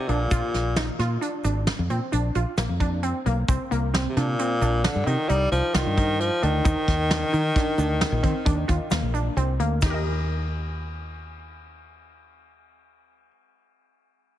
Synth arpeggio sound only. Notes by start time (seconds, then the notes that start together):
0.09 D4
0.31 F4
0.77 D#4
0.99 F4
1.21 D4
1.44 D4
1.90 C4
2.12 D4
2.35 F4
2.58 A#3
2.80 D4
3.03 C4
3.26 A#3
3.48 C4
3.71 A#3
3.94 C4
4.17 D4
4.39 C4
4.62 D4
4.84 D4
5.06 D#4
5.29 D#4
5.75 F4
5.97 D#4
6.42 D4
6.64 D#4
7.10 D4
7.33 D#4
7.56 D4
7.78 D4
8.23 C4
8.45 D4
8.68 F4
8.91 A#3
9.14 D4
9.37 C4
9.60 A#3
9.82 D#4 G4
9.90 A#4 D#5